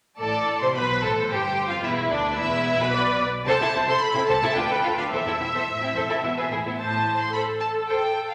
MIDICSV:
0, 0, Header, 1, 6, 480
1, 0, Start_track
1, 0, Key_signature, 0, "minor"
1, 0, Tempo, 544959
1, 174, Time_signature, 3, 2, 24, 8
1, 3531, Tempo, 553506
1, 7290, End_track
2, 0, Start_track
2, 0, Title_t, "Violin section"
2, 0, Program_c, 0, 48
2, 179, Note_on_c, 0, 81, 72
2, 518, Note_off_c, 0, 81, 0
2, 534, Note_on_c, 0, 84, 63
2, 653, Note_on_c, 0, 83, 70
2, 660, Note_off_c, 0, 84, 0
2, 897, Note_off_c, 0, 83, 0
2, 903, Note_on_c, 0, 81, 68
2, 973, Note_off_c, 0, 81, 0
2, 1144, Note_on_c, 0, 79, 64
2, 1496, Note_off_c, 0, 79, 0
2, 1501, Note_on_c, 0, 77, 55
2, 1549, Note_off_c, 0, 77, 0
2, 1617, Note_on_c, 0, 76, 63
2, 1688, Note_off_c, 0, 76, 0
2, 1861, Note_on_c, 0, 74, 72
2, 2093, Note_on_c, 0, 76, 81
2, 2094, Note_off_c, 0, 74, 0
2, 2453, Note_off_c, 0, 76, 0
2, 2453, Note_on_c, 0, 83, 81
2, 2813, Note_off_c, 0, 83, 0
2, 3051, Note_on_c, 0, 81, 105
2, 3385, Note_off_c, 0, 81, 0
2, 3419, Note_on_c, 0, 84, 91
2, 3534, Note_on_c, 0, 83, 103
2, 3535, Note_off_c, 0, 84, 0
2, 3759, Note_on_c, 0, 81, 93
2, 3770, Note_off_c, 0, 83, 0
2, 3999, Note_off_c, 0, 81, 0
2, 4003, Note_on_c, 0, 79, 81
2, 4367, Note_off_c, 0, 79, 0
2, 4373, Note_on_c, 0, 77, 69
2, 4421, Note_off_c, 0, 77, 0
2, 4490, Note_on_c, 0, 76, 73
2, 5674, Note_off_c, 0, 76, 0
2, 5932, Note_on_c, 0, 81, 76
2, 6269, Note_off_c, 0, 81, 0
2, 6299, Note_on_c, 0, 84, 77
2, 6413, Note_on_c, 0, 83, 71
2, 6418, Note_off_c, 0, 84, 0
2, 6482, Note_off_c, 0, 83, 0
2, 6650, Note_on_c, 0, 81, 74
2, 6719, Note_off_c, 0, 81, 0
2, 6892, Note_on_c, 0, 79, 68
2, 7242, Note_off_c, 0, 79, 0
2, 7252, Note_on_c, 0, 77, 65
2, 7290, Note_off_c, 0, 77, 0
2, 7290, End_track
3, 0, Start_track
3, 0, Title_t, "Viola section"
3, 0, Program_c, 1, 48
3, 176, Note_on_c, 1, 74, 58
3, 630, Note_off_c, 1, 74, 0
3, 665, Note_on_c, 1, 72, 49
3, 1625, Note_off_c, 1, 72, 0
3, 1627, Note_on_c, 1, 71, 62
3, 2558, Note_off_c, 1, 71, 0
3, 2574, Note_on_c, 1, 74, 71
3, 2806, Note_off_c, 1, 74, 0
3, 2816, Note_on_c, 1, 74, 77
3, 2887, Note_off_c, 1, 74, 0
3, 3061, Note_on_c, 1, 72, 71
3, 3525, Note_off_c, 1, 72, 0
3, 3536, Note_on_c, 1, 69, 71
3, 4002, Note_off_c, 1, 69, 0
3, 4006, Note_on_c, 1, 71, 67
3, 4490, Note_off_c, 1, 71, 0
3, 4491, Note_on_c, 1, 76, 66
3, 5674, Note_off_c, 1, 76, 0
3, 5942, Note_on_c, 1, 72, 62
3, 6386, Note_off_c, 1, 72, 0
3, 6425, Note_on_c, 1, 69, 65
3, 7290, Note_off_c, 1, 69, 0
3, 7290, End_track
4, 0, Start_track
4, 0, Title_t, "Violin section"
4, 0, Program_c, 2, 48
4, 179, Note_on_c, 2, 69, 62
4, 518, Note_off_c, 2, 69, 0
4, 549, Note_on_c, 2, 72, 55
4, 596, Note_off_c, 2, 72, 0
4, 669, Note_on_c, 2, 71, 67
4, 905, Note_off_c, 2, 71, 0
4, 912, Note_on_c, 2, 69, 67
4, 1151, Note_off_c, 2, 69, 0
4, 1159, Note_on_c, 2, 67, 59
4, 1502, Note_on_c, 2, 65, 56
4, 1511, Note_off_c, 2, 67, 0
4, 1623, Note_off_c, 2, 65, 0
4, 1628, Note_on_c, 2, 64, 66
4, 1860, Note_on_c, 2, 62, 57
4, 1864, Note_off_c, 2, 64, 0
4, 2099, Note_off_c, 2, 62, 0
4, 2105, Note_on_c, 2, 64, 68
4, 2452, Note_off_c, 2, 64, 0
4, 2468, Note_on_c, 2, 71, 75
4, 2820, Note_off_c, 2, 71, 0
4, 3062, Note_on_c, 2, 72, 80
4, 3066, Note_on_c, 2, 69, 85
4, 3108, Note_off_c, 2, 72, 0
4, 3111, Note_off_c, 2, 69, 0
4, 3184, Note_on_c, 2, 69, 55
4, 3185, Note_on_c, 2, 64, 48
4, 3230, Note_off_c, 2, 64, 0
4, 3230, Note_off_c, 2, 69, 0
4, 3297, Note_on_c, 2, 60, 48
4, 3301, Note_on_c, 2, 64, 47
4, 3344, Note_off_c, 2, 60, 0
4, 3347, Note_off_c, 2, 64, 0
4, 3409, Note_on_c, 2, 72, 84
4, 3410, Note_on_c, 2, 69, 81
4, 3457, Note_off_c, 2, 72, 0
4, 3459, Note_off_c, 2, 69, 0
4, 3643, Note_on_c, 2, 64, 63
4, 3646, Note_on_c, 2, 60, 59
4, 3692, Note_off_c, 2, 64, 0
4, 3695, Note_off_c, 2, 60, 0
4, 3770, Note_on_c, 2, 69, 81
4, 3770, Note_on_c, 2, 72, 82
4, 3818, Note_off_c, 2, 69, 0
4, 3818, Note_off_c, 2, 72, 0
4, 3894, Note_on_c, 2, 69, 61
4, 3897, Note_on_c, 2, 64, 73
4, 3941, Note_off_c, 2, 69, 0
4, 3943, Note_off_c, 2, 64, 0
4, 4008, Note_on_c, 2, 65, 62
4, 4009, Note_on_c, 2, 62, 54
4, 4056, Note_off_c, 2, 65, 0
4, 4057, Note_off_c, 2, 62, 0
4, 4124, Note_on_c, 2, 71, 68
4, 4129, Note_on_c, 2, 69, 65
4, 4174, Note_off_c, 2, 71, 0
4, 4177, Note_off_c, 2, 69, 0
4, 4247, Note_on_c, 2, 65, 47
4, 4250, Note_on_c, 2, 69, 48
4, 4296, Note_off_c, 2, 65, 0
4, 4298, Note_off_c, 2, 69, 0
4, 4371, Note_on_c, 2, 65, 46
4, 4372, Note_on_c, 2, 62, 53
4, 4419, Note_off_c, 2, 65, 0
4, 4420, Note_off_c, 2, 62, 0
4, 4500, Note_on_c, 2, 72, 53
4, 4502, Note_on_c, 2, 69, 62
4, 4546, Note_off_c, 2, 72, 0
4, 4548, Note_off_c, 2, 69, 0
4, 4616, Note_on_c, 2, 69, 39
4, 4619, Note_on_c, 2, 64, 39
4, 4664, Note_off_c, 2, 69, 0
4, 4666, Note_off_c, 2, 64, 0
4, 4736, Note_on_c, 2, 64, 38
4, 4737, Note_on_c, 2, 60, 31
4, 4784, Note_off_c, 2, 64, 0
4, 4785, Note_off_c, 2, 60, 0
4, 4860, Note_on_c, 2, 69, 53
4, 4860, Note_on_c, 2, 72, 55
4, 4907, Note_off_c, 2, 69, 0
4, 4908, Note_off_c, 2, 72, 0
4, 5102, Note_on_c, 2, 60, 41
4, 5102, Note_on_c, 2, 64, 42
4, 5149, Note_off_c, 2, 60, 0
4, 5149, Note_off_c, 2, 64, 0
4, 5221, Note_on_c, 2, 72, 61
4, 5223, Note_on_c, 2, 69, 65
4, 5268, Note_off_c, 2, 72, 0
4, 5270, Note_off_c, 2, 69, 0
4, 5337, Note_on_c, 2, 64, 38
4, 5339, Note_on_c, 2, 69, 45
4, 5385, Note_off_c, 2, 64, 0
4, 5387, Note_off_c, 2, 69, 0
4, 5462, Note_on_c, 2, 59, 39
4, 5465, Note_on_c, 2, 64, 34
4, 5510, Note_off_c, 2, 59, 0
4, 5511, Note_off_c, 2, 64, 0
4, 5583, Note_on_c, 2, 71, 46
4, 5586, Note_on_c, 2, 68, 41
4, 5631, Note_off_c, 2, 71, 0
4, 5633, Note_off_c, 2, 68, 0
4, 5704, Note_on_c, 2, 68, 33
4, 5705, Note_on_c, 2, 64, 37
4, 5752, Note_off_c, 2, 64, 0
4, 5752, Note_off_c, 2, 68, 0
4, 5827, Note_on_c, 2, 59, 43
4, 5829, Note_on_c, 2, 64, 42
4, 5874, Note_off_c, 2, 59, 0
4, 5875, Note_off_c, 2, 64, 0
4, 6420, Note_on_c, 2, 72, 50
4, 6423, Note_on_c, 2, 69, 45
4, 6490, Note_off_c, 2, 72, 0
4, 6492, Note_off_c, 2, 69, 0
4, 6901, Note_on_c, 2, 72, 50
4, 6905, Note_on_c, 2, 69, 43
4, 6971, Note_off_c, 2, 72, 0
4, 6974, Note_off_c, 2, 69, 0
4, 7290, End_track
5, 0, Start_track
5, 0, Title_t, "Cello section"
5, 0, Program_c, 3, 48
5, 177, Note_on_c, 3, 45, 62
5, 517, Note_off_c, 3, 45, 0
5, 546, Note_on_c, 3, 48, 62
5, 664, Note_off_c, 3, 48, 0
5, 665, Note_on_c, 3, 47, 57
5, 906, Note_on_c, 3, 45, 61
5, 908, Note_off_c, 3, 47, 0
5, 1146, Note_on_c, 3, 43, 53
5, 1148, Note_off_c, 3, 45, 0
5, 1505, Note_off_c, 3, 43, 0
5, 1508, Note_on_c, 3, 41, 62
5, 1626, Note_off_c, 3, 41, 0
5, 1626, Note_on_c, 3, 40, 60
5, 1858, Note_off_c, 3, 40, 0
5, 1864, Note_on_c, 3, 38, 58
5, 2100, Note_on_c, 3, 40, 76
5, 2101, Note_off_c, 3, 38, 0
5, 2455, Note_on_c, 3, 47, 68
5, 2456, Note_off_c, 3, 40, 0
5, 2807, Note_off_c, 3, 47, 0
5, 3053, Note_on_c, 3, 48, 84
5, 3101, Note_off_c, 3, 48, 0
5, 3172, Note_on_c, 3, 48, 67
5, 3220, Note_off_c, 3, 48, 0
5, 3296, Note_on_c, 3, 48, 55
5, 3343, Note_off_c, 3, 48, 0
5, 3408, Note_on_c, 3, 48, 80
5, 3457, Note_off_c, 3, 48, 0
5, 3648, Note_on_c, 3, 48, 60
5, 3696, Note_off_c, 3, 48, 0
5, 3768, Note_on_c, 3, 48, 88
5, 3816, Note_off_c, 3, 48, 0
5, 3892, Note_on_c, 3, 48, 52
5, 3939, Note_off_c, 3, 48, 0
5, 4013, Note_on_c, 3, 38, 51
5, 4060, Note_off_c, 3, 38, 0
5, 4131, Note_on_c, 3, 38, 67
5, 4179, Note_off_c, 3, 38, 0
5, 4251, Note_on_c, 3, 38, 53
5, 4299, Note_off_c, 3, 38, 0
5, 4370, Note_on_c, 3, 38, 52
5, 4419, Note_off_c, 3, 38, 0
5, 4490, Note_on_c, 3, 40, 63
5, 4539, Note_off_c, 3, 40, 0
5, 4609, Note_on_c, 3, 40, 47
5, 4658, Note_off_c, 3, 40, 0
5, 4733, Note_on_c, 3, 40, 40
5, 4781, Note_off_c, 3, 40, 0
5, 4858, Note_on_c, 3, 40, 63
5, 4906, Note_off_c, 3, 40, 0
5, 4980, Note_on_c, 3, 45, 53
5, 5314, Note_off_c, 3, 45, 0
5, 5345, Note_on_c, 3, 48, 45
5, 5459, Note_off_c, 3, 48, 0
5, 5464, Note_on_c, 3, 47, 42
5, 5702, Note_on_c, 3, 45, 49
5, 5703, Note_off_c, 3, 47, 0
5, 5934, Note_off_c, 3, 45, 0
5, 5945, Note_on_c, 3, 45, 69
5, 6341, Note_off_c, 3, 45, 0
5, 7290, End_track
6, 0, Start_track
6, 0, Title_t, "Double bass section"
6, 0, Program_c, 4, 48
6, 177, Note_on_c, 4, 33, 56
6, 517, Note_off_c, 4, 33, 0
6, 665, Note_on_c, 4, 35, 71
6, 908, Note_off_c, 4, 35, 0
6, 913, Note_on_c, 4, 33, 59
6, 1151, Note_off_c, 4, 33, 0
6, 1155, Note_on_c, 4, 31, 59
6, 1509, Note_off_c, 4, 31, 0
6, 1632, Note_on_c, 4, 28, 61
6, 1861, Note_off_c, 4, 28, 0
6, 1863, Note_on_c, 4, 38, 69
6, 2099, Note_on_c, 4, 28, 79
6, 2100, Note_off_c, 4, 38, 0
6, 2455, Note_on_c, 4, 35, 74
6, 2456, Note_off_c, 4, 28, 0
6, 2807, Note_off_c, 4, 35, 0
6, 3048, Note_on_c, 4, 36, 74
6, 3097, Note_off_c, 4, 36, 0
6, 3293, Note_on_c, 4, 36, 65
6, 3341, Note_off_c, 4, 36, 0
6, 3768, Note_on_c, 4, 36, 89
6, 3816, Note_off_c, 4, 36, 0
6, 4006, Note_on_c, 4, 38, 57
6, 4054, Note_off_c, 4, 38, 0
6, 4255, Note_on_c, 4, 38, 52
6, 4302, Note_off_c, 4, 38, 0
6, 4490, Note_on_c, 4, 28, 54
6, 4539, Note_off_c, 4, 28, 0
6, 4737, Note_on_c, 4, 28, 47
6, 4784, Note_off_c, 4, 28, 0
6, 5217, Note_on_c, 4, 28, 56
6, 5265, Note_off_c, 4, 28, 0
6, 5455, Note_on_c, 4, 28, 40
6, 5504, Note_off_c, 4, 28, 0
6, 5699, Note_on_c, 4, 28, 38
6, 5747, Note_off_c, 4, 28, 0
6, 5937, Note_on_c, 4, 33, 57
6, 6337, Note_off_c, 4, 33, 0
6, 7290, End_track
0, 0, End_of_file